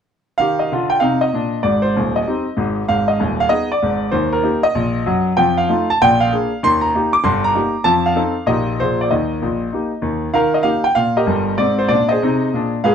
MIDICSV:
0, 0, Header, 1, 2, 480
1, 0, Start_track
1, 0, Key_signature, -3, "major"
1, 0, Tempo, 311365
1, 600, Time_signature, 4, 2, 24, 8
1, 19962, End_track
2, 0, Start_track
2, 0, Title_t, "Grand piano"
2, 0, Program_c, 0, 0
2, 580, Note_on_c, 0, 77, 87
2, 608, Note_on_c, 0, 51, 49
2, 633, Note_on_c, 0, 67, 49
2, 858, Control_c, 0, 64, 127
2, 905, Note_off_c, 0, 77, 0
2, 914, Note_on_c, 0, 75, 53
2, 989, Note_off_c, 0, 51, 0
2, 1004, Note_off_c, 0, 67, 0
2, 1097, Control_c, 0, 64, 0
2, 1108, Note_on_c, 0, 50, 57
2, 1123, Note_on_c, 0, 65, 62
2, 1383, Note_on_c, 0, 79, 77
2, 1395, Note_off_c, 0, 75, 0
2, 1481, Note_off_c, 0, 50, 0
2, 1490, Note_off_c, 0, 65, 0
2, 1541, Note_on_c, 0, 77, 83
2, 1555, Note_off_c, 0, 79, 0
2, 1555, Note_on_c, 0, 48, 59
2, 1576, Note_on_c, 0, 63, 58
2, 1865, Note_off_c, 0, 77, 0
2, 1867, Note_on_c, 0, 75, 71
2, 1941, Note_off_c, 0, 48, 0
2, 1954, Note_off_c, 0, 63, 0
2, 2044, Note_on_c, 0, 46, 51
2, 2075, Note_on_c, 0, 62, 55
2, 2427, Note_off_c, 0, 46, 0
2, 2445, Note_off_c, 0, 62, 0
2, 2512, Note_on_c, 0, 74, 66
2, 2517, Note_off_c, 0, 75, 0
2, 2519, Note_on_c, 0, 44, 49
2, 2522, Note_on_c, 0, 32, 54
2, 2770, Control_c, 0, 64, 127
2, 2805, Note_on_c, 0, 72, 68
2, 2831, Note_off_c, 0, 74, 0
2, 2904, Note_off_c, 0, 44, 0
2, 2906, Note_off_c, 0, 32, 0
2, 3024, Control_c, 0, 64, 0
2, 3031, Note_on_c, 0, 27, 55
2, 3031, Note_on_c, 0, 39, 57
2, 3301, Note_off_c, 0, 72, 0
2, 3328, Note_on_c, 0, 75, 58
2, 3403, Note_off_c, 0, 27, 0
2, 3403, Note_off_c, 0, 39, 0
2, 3504, Note_on_c, 0, 63, 38
2, 3504, Note_on_c, 0, 67, 35
2, 3519, Note_on_c, 0, 60, 42
2, 3762, Note_off_c, 0, 63, 0
2, 3762, Note_off_c, 0, 67, 0
2, 3773, Note_off_c, 0, 60, 0
2, 3959, Note_on_c, 0, 44, 55
2, 3964, Note_on_c, 0, 32, 54
2, 4283, Note_off_c, 0, 75, 0
2, 4344, Note_off_c, 0, 44, 0
2, 4347, Note_off_c, 0, 32, 0
2, 4448, Note_on_c, 0, 44, 47
2, 4448, Note_on_c, 0, 77, 77
2, 4449, Note_on_c, 0, 32, 52
2, 4700, Control_c, 0, 64, 127
2, 4746, Note_on_c, 0, 75, 62
2, 4759, Note_off_c, 0, 77, 0
2, 4830, Note_off_c, 0, 32, 0
2, 4830, Note_off_c, 0, 44, 0
2, 4932, Note_on_c, 0, 27, 57
2, 4936, Note_on_c, 0, 39, 60
2, 4938, Control_c, 0, 64, 0
2, 5232, Note_off_c, 0, 75, 0
2, 5246, Note_on_c, 0, 77, 77
2, 5312, Note_off_c, 0, 27, 0
2, 5315, Note_off_c, 0, 39, 0
2, 5382, Note_on_c, 0, 68, 37
2, 5384, Note_on_c, 0, 75, 90
2, 5390, Note_on_c, 0, 59, 38
2, 5391, Note_on_c, 0, 63, 39
2, 5407, Note_off_c, 0, 77, 0
2, 5651, Note_off_c, 0, 68, 0
2, 5658, Note_off_c, 0, 59, 0
2, 5658, Note_off_c, 0, 63, 0
2, 5708, Note_off_c, 0, 75, 0
2, 5728, Note_on_c, 0, 74, 69
2, 5896, Note_on_c, 0, 44, 60
2, 5904, Note_on_c, 0, 32, 56
2, 6274, Note_off_c, 0, 44, 0
2, 6279, Note_off_c, 0, 32, 0
2, 6342, Note_on_c, 0, 72, 75
2, 6355, Note_on_c, 0, 51, 54
2, 6356, Note_on_c, 0, 39, 57
2, 6368, Note_off_c, 0, 74, 0
2, 6610, Control_c, 0, 64, 127
2, 6667, Note_off_c, 0, 72, 0
2, 6668, Note_on_c, 0, 70, 69
2, 6766, Note_off_c, 0, 51, 0
2, 6767, Note_off_c, 0, 39, 0
2, 6827, Note_on_c, 0, 58, 45
2, 6828, Note_on_c, 0, 63, 44
2, 6845, Note_on_c, 0, 67, 45
2, 6865, Control_c, 0, 64, 0
2, 7095, Note_off_c, 0, 58, 0
2, 7096, Note_off_c, 0, 63, 0
2, 7108, Note_off_c, 0, 67, 0
2, 7143, Note_on_c, 0, 75, 83
2, 7152, Note_off_c, 0, 70, 0
2, 7320, Note_on_c, 0, 34, 68
2, 7324, Note_on_c, 0, 46, 61
2, 7729, Note_off_c, 0, 34, 0
2, 7731, Note_off_c, 0, 46, 0
2, 7804, Note_on_c, 0, 42, 62
2, 7804, Note_on_c, 0, 54, 62
2, 8110, Note_off_c, 0, 75, 0
2, 8187, Note_off_c, 0, 42, 0
2, 8187, Note_off_c, 0, 54, 0
2, 8274, Note_on_c, 0, 79, 85
2, 8283, Note_on_c, 0, 53, 69
2, 8287, Note_on_c, 0, 41, 57
2, 8542, Control_c, 0, 64, 127
2, 8592, Note_off_c, 0, 79, 0
2, 8594, Note_on_c, 0, 77, 74
2, 8690, Note_off_c, 0, 53, 0
2, 8693, Note_off_c, 0, 41, 0
2, 8774, Note_on_c, 0, 57, 45
2, 8777, Control_c, 0, 64, 0
2, 8777, Note_on_c, 0, 63, 44
2, 8788, Note_on_c, 0, 65, 55
2, 9035, Note_off_c, 0, 57, 0
2, 9037, Note_off_c, 0, 63, 0
2, 9045, Note_off_c, 0, 65, 0
2, 9075, Note_off_c, 0, 77, 0
2, 9098, Note_on_c, 0, 81, 81
2, 9253, Note_off_c, 0, 81, 0
2, 9274, Note_on_c, 0, 34, 70
2, 9276, Note_on_c, 0, 79, 112
2, 9279, Note_on_c, 0, 46, 74
2, 9492, Control_c, 0, 64, 127
2, 9566, Note_on_c, 0, 77, 89
2, 9573, Note_off_c, 0, 79, 0
2, 9668, Note_off_c, 0, 34, 0
2, 9671, Note_off_c, 0, 46, 0
2, 9743, Control_c, 0, 64, 0
2, 9752, Note_on_c, 0, 68, 48
2, 9761, Note_on_c, 0, 58, 45
2, 9767, Note_on_c, 0, 62, 41
2, 10007, Note_off_c, 0, 68, 0
2, 10014, Note_off_c, 0, 58, 0
2, 10018, Note_off_c, 0, 62, 0
2, 10206, Note_off_c, 0, 77, 0
2, 10223, Note_on_c, 0, 51, 68
2, 10235, Note_on_c, 0, 84, 107
2, 10241, Note_on_c, 0, 39, 58
2, 10447, Control_c, 0, 64, 127
2, 10503, Note_on_c, 0, 82, 78
2, 10533, Note_off_c, 0, 84, 0
2, 10621, Note_off_c, 0, 51, 0
2, 10632, Note_off_c, 0, 39, 0
2, 10703, Note_on_c, 0, 58, 44
2, 10705, Control_c, 0, 64, 0
2, 10713, Note_on_c, 0, 63, 47
2, 10726, Note_on_c, 0, 67, 49
2, 10961, Note_off_c, 0, 58, 0
2, 10968, Note_off_c, 0, 63, 0
2, 10977, Note_off_c, 0, 67, 0
2, 10989, Note_off_c, 0, 82, 0
2, 10993, Note_on_c, 0, 86, 85
2, 11157, Note_on_c, 0, 31, 71
2, 11157, Note_on_c, 0, 84, 81
2, 11159, Note_off_c, 0, 86, 0
2, 11167, Note_on_c, 0, 43, 76
2, 11407, Control_c, 0, 64, 127
2, 11473, Note_off_c, 0, 84, 0
2, 11475, Note_on_c, 0, 82, 89
2, 11566, Note_off_c, 0, 31, 0
2, 11572, Note_off_c, 0, 43, 0
2, 11636, Note_on_c, 0, 58, 44
2, 11638, Note_on_c, 0, 63, 40
2, 11654, Note_on_c, 0, 67, 46
2, 11664, Control_c, 0, 64, 0
2, 11901, Note_off_c, 0, 58, 0
2, 11903, Note_off_c, 0, 63, 0
2, 11914, Note_off_c, 0, 67, 0
2, 12090, Note_on_c, 0, 81, 95
2, 12095, Note_on_c, 0, 41, 68
2, 12099, Note_on_c, 0, 53, 64
2, 12120, Note_off_c, 0, 82, 0
2, 12370, Control_c, 0, 64, 127
2, 12419, Note_off_c, 0, 81, 0
2, 12424, Note_on_c, 0, 77, 75
2, 12514, Note_off_c, 0, 41, 0
2, 12516, Note_off_c, 0, 53, 0
2, 12568, Note_on_c, 0, 60, 41
2, 12580, Note_on_c, 0, 69, 50
2, 12584, Note_on_c, 0, 63, 44
2, 12622, Control_c, 0, 64, 0
2, 12841, Note_off_c, 0, 60, 0
2, 12849, Note_off_c, 0, 69, 0
2, 12853, Note_off_c, 0, 63, 0
2, 13048, Note_on_c, 0, 46, 71
2, 13054, Note_on_c, 0, 58, 42
2, 13056, Note_on_c, 0, 75, 75
2, 13057, Note_on_c, 0, 34, 60
2, 13072, Note_on_c, 0, 63, 39
2, 13075, Note_off_c, 0, 77, 0
2, 13081, Note_on_c, 0, 67, 37
2, 13325, Note_off_c, 0, 58, 0
2, 13338, Note_off_c, 0, 63, 0
2, 13340, Control_c, 0, 64, 127
2, 13345, Note_off_c, 0, 67, 0
2, 13470, Note_off_c, 0, 46, 0
2, 13475, Note_off_c, 0, 34, 0
2, 13548, Note_off_c, 0, 75, 0
2, 13564, Note_on_c, 0, 72, 75
2, 13571, Note_on_c, 0, 46, 55
2, 13577, Control_c, 0, 64, 0
2, 13577, Note_on_c, 0, 34, 49
2, 13578, Note_on_c, 0, 58, 31
2, 13582, Note_on_c, 0, 65, 36
2, 13590, Note_on_c, 0, 68, 35
2, 13818, Control_c, 0, 64, 127
2, 13837, Note_off_c, 0, 58, 0
2, 13840, Note_off_c, 0, 65, 0
2, 13846, Note_off_c, 0, 68, 0
2, 13876, Note_off_c, 0, 72, 0
2, 13890, Note_on_c, 0, 74, 55
2, 13974, Note_off_c, 0, 46, 0
2, 13978, Note_off_c, 0, 34, 0
2, 14038, Note_on_c, 0, 75, 58
2, 14044, Note_on_c, 0, 39, 46
2, 14048, Note_off_c, 0, 74, 0
2, 14052, Note_on_c, 0, 51, 49
2, 14057, Control_c, 0, 64, 0
2, 14307, Control_c, 0, 64, 127
2, 14426, Note_off_c, 0, 39, 0
2, 14431, Note_off_c, 0, 51, 0
2, 14515, Note_on_c, 0, 46, 55
2, 14526, Note_on_c, 0, 34, 54
2, 14531, Control_c, 0, 64, 0
2, 14901, Note_off_c, 0, 46, 0
2, 14907, Note_off_c, 0, 34, 0
2, 14995, Note_on_c, 0, 63, 35
2, 15013, Note_on_c, 0, 67, 33
2, 15017, Note_on_c, 0, 58, 36
2, 15260, Note_off_c, 0, 63, 0
2, 15274, Note_off_c, 0, 67, 0
2, 15276, Note_off_c, 0, 58, 0
2, 15442, Note_on_c, 0, 39, 49
2, 15447, Note_on_c, 0, 51, 51
2, 15479, Note_off_c, 0, 75, 0
2, 15841, Note_off_c, 0, 39, 0
2, 15844, Note_off_c, 0, 51, 0
2, 15932, Note_on_c, 0, 51, 58
2, 15932, Note_on_c, 0, 77, 79
2, 15958, Note_on_c, 0, 70, 70
2, 16212, Control_c, 0, 64, 127
2, 16251, Note_off_c, 0, 70, 0
2, 16252, Note_on_c, 0, 75, 64
2, 16261, Note_off_c, 0, 77, 0
2, 16352, Note_off_c, 0, 51, 0
2, 16385, Note_on_c, 0, 77, 82
2, 16390, Note_on_c, 0, 58, 45
2, 16402, Note_on_c, 0, 67, 41
2, 16405, Note_on_c, 0, 63, 42
2, 16429, Note_off_c, 0, 75, 0
2, 16461, Control_c, 0, 64, 0
2, 16667, Note_off_c, 0, 58, 0
2, 16677, Note_off_c, 0, 67, 0
2, 16678, Note_off_c, 0, 63, 0
2, 16711, Note_on_c, 0, 79, 78
2, 16727, Note_off_c, 0, 77, 0
2, 16882, Note_on_c, 0, 77, 87
2, 16897, Note_on_c, 0, 46, 56
2, 16898, Note_off_c, 0, 79, 0
2, 17214, Note_on_c, 0, 67, 54
2, 17215, Note_off_c, 0, 77, 0
2, 17219, Note_on_c, 0, 75, 70
2, 17221, Note_on_c, 0, 70, 53
2, 17315, Note_off_c, 0, 46, 0
2, 17368, Note_on_c, 0, 31, 58
2, 17375, Note_on_c, 0, 43, 57
2, 17765, Note_off_c, 0, 31, 0
2, 17769, Note_off_c, 0, 43, 0
2, 17824, Note_off_c, 0, 67, 0
2, 17828, Note_off_c, 0, 70, 0
2, 17849, Note_on_c, 0, 44, 55
2, 17849, Note_on_c, 0, 74, 74
2, 17872, Note_off_c, 0, 75, 0
2, 17875, Note_on_c, 0, 60, 50
2, 18133, Control_c, 0, 64, 127
2, 18168, Note_on_c, 0, 72, 70
2, 18179, Note_off_c, 0, 74, 0
2, 18246, Note_off_c, 0, 44, 0
2, 18261, Note_off_c, 0, 60, 0
2, 18321, Note_on_c, 0, 46, 58
2, 18322, Note_on_c, 0, 74, 84
2, 18347, Note_off_c, 0, 72, 0
2, 18366, Note_on_c, 0, 62, 63
2, 18380, Control_c, 0, 64, 0
2, 18632, Note_on_c, 0, 75, 73
2, 18656, Note_off_c, 0, 74, 0
2, 18665, Note_on_c, 0, 72, 56
2, 18675, Note_on_c, 0, 68, 56
2, 18721, Note_off_c, 0, 46, 0
2, 18748, Note_off_c, 0, 62, 0
2, 18847, Note_on_c, 0, 48, 67
2, 18866, Note_on_c, 0, 63, 58
2, 19228, Note_off_c, 0, 48, 0
2, 19240, Note_off_c, 0, 63, 0
2, 19319, Note_on_c, 0, 46, 52
2, 19353, Note_on_c, 0, 62, 61
2, 19568, Note_off_c, 0, 72, 0
2, 19573, Note_off_c, 0, 68, 0
2, 19614, Note_off_c, 0, 75, 0
2, 19704, Note_off_c, 0, 46, 0
2, 19724, Note_off_c, 0, 62, 0
2, 19792, Note_on_c, 0, 77, 78
2, 19797, Note_on_c, 0, 44, 61
2, 19809, Note_on_c, 0, 71, 57
2, 19813, Note_on_c, 0, 68, 72
2, 19962, Note_off_c, 0, 44, 0
2, 19962, Note_off_c, 0, 68, 0
2, 19962, Note_off_c, 0, 71, 0
2, 19962, Note_off_c, 0, 77, 0
2, 19962, End_track
0, 0, End_of_file